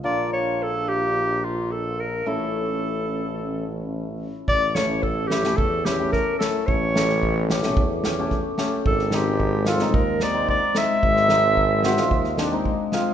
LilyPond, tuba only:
\new Staff \with { instrumentName = "Tuba" } { \clef bass \time 4/4 \tempo 4 = 110 bes,,1 | a,,1 | a,,2 e,2 | a,,2 e,2 |
gis,,2 dis,2 | gis,,2 dis,2 | }